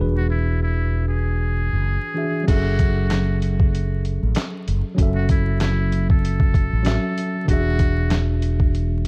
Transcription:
Already playing: E3 D4 F#4
0.00 E1 G#4 B4
0.17 F#4
0.30 E4
0.62 E4
1.08 G#4
1.73 F#1
2.14 E3 D4 F#4 G#4 E5
2.43 F#3 C#4
2.47 F#1 F#4 G#4 A4, kick, closed hi-hat, crash
2.51 E5
2.79 kick, closed hi-hat
3.10 snare, clap, closed hi-hat
3.42 closed hi-hat
3.60 kick
3.75 closed hi-hat
4.05 closed hi-hat
4.23 A1
4.35 snare, clap, closed hi-hat
4.68 F#1, closed hi-hat
4.95 F#3 C#4, kick, closed hi-hat
4.99 F#1 F#4 A4 E5
5.15 F#4
5.29 E4, kick, closed hi-hat
5.60 E4, snare, clap, closed hi-hat
5.92 closed hi-hat
6.10 A4, kick
6.25 closed hi-hat
6.40 kick
6.54 kick, closed hi-hat
6.73 A1
6.83 F#3 C#4 F#4 A4, snare, closed hi-hat
6.87 E5, clap
7.18 closed hi-hat
7.45 E1 E3 D4 F#4, kick, closed hi-hat
7.49 F#4 G#4 E5
7.79 kick, closed hi-hat
8.10 snare, clap, closed hi-hat
8.42 closed hi-hat
8.60 kick
8.75 closed hi-hat

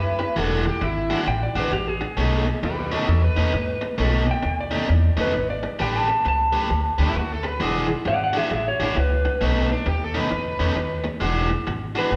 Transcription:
Already playing: F#2 E4 B4
0.19 muted overdriven electric guitar stroke
0.36 E1 E3 G#3 D4 F#4
0.42 A4
0.64 G4, muted overdriven electric guitar stroke
0.81 G#1 E4, muted overdriven electric guitar stroke
1.10 E3 G#3 D4 F#4
1.27 A1 G5, muted overdriven electric guitar stroke
1.43 D5
1.55 A1 E3 G#3 D4 F#4
1.59 B4
1.72 A1 G4, muted overdriven electric guitar stroke
1.88 G#4
2.01 muted overdriven electric guitar stroke
2.17 B1 B2 A3 C#4 D#4
2.46 muted overdriven electric guitar stroke
2.63 D#2 G4 B4, muted overdriven electric guitar stroke
2.79 G4 B4
2.91 B2 A3 C#4 D#4 F#4 A4
3.08 E2 F#4 A4, muted overdriven electric guitar stroke
3.24 B4
3.36 E2 B2 A3 C#4 D#4
3.53 G#2, muted overdriven electric guitar stroke
3.81 muted overdriven electric guitar stroke
3.98 B1 B2 A3 C#4 D#4
4.26 muted overdriven electric guitar stroke
4.31 G5
4.42 D#2, muted overdriven electric guitar stroke
4.61 D5
4.71 B2 A3 C#4 D#4
4.88 E2, muted overdriven electric guitar stroke
5.17 E2 B2 A3 C#4 D#4
5.21 B4
5.34 G#1, muted overdriven electric guitar stroke
5.50 D5
5.63 muted overdriven electric guitar stroke
5.79 A1 A3 C#4 G4 B4 G5
5.98 A5
6.08 muted overdriven electric guitar stroke
6.25 C#2 A5, muted overdriven electric guitar stroke
6.53 A3 C#4 G4 B4
6.69 D2, muted overdriven electric guitar stroke
6.98 D2 A3 C#4 E4 G4 B4
7.15 D2 F#4, muted overdriven electric guitar stroke
7.32 A4
7.43 muted overdriven electric guitar stroke
7.48 B4
7.60 E1 E3 G#3 D4 F#4 G#4
7.88 muted overdriven electric guitar stroke
8.05 G#1 D5 F#5, muted overdriven electric guitar stroke
8.23 D5 F#5
8.33 E3 G#3 D4 F#4 G#4
8.38 E5
8.51 A1 G#4 E5, muted overdriven electric guitar stroke
8.67 E4 C#5
8.80 A1 E3 G#3 D4 E4 F#4
8.84 C#5
8.96 C#2 B4, muted overdriven electric guitar stroke
9.25 muted overdriven electric guitar stroke
9.41 B1 B2 A3 C#4 D#4
9.70 D4, muted overdriven electric guitar stroke
9.86 D#2 G4, muted overdriven electric guitar stroke
10.04 A4
10.14 B2 A3 C#4 D#4
10.19 B4
10.31 E2, muted overdriven electric guitar stroke
10.59 E2 B2 A3 C#4 D#4
10.76 D#2, muted overdriven electric guitar stroke
11.04 muted overdriven electric guitar stroke
11.20 E1 E3 G#3 D4 F#4
11.50 muted overdriven electric guitar stroke
11.67 G#1, muted overdriven electric guitar stroke
11.95 E3 G#3 D4 F#4 B4
12.12 A1, muted overdriven electric guitar stroke

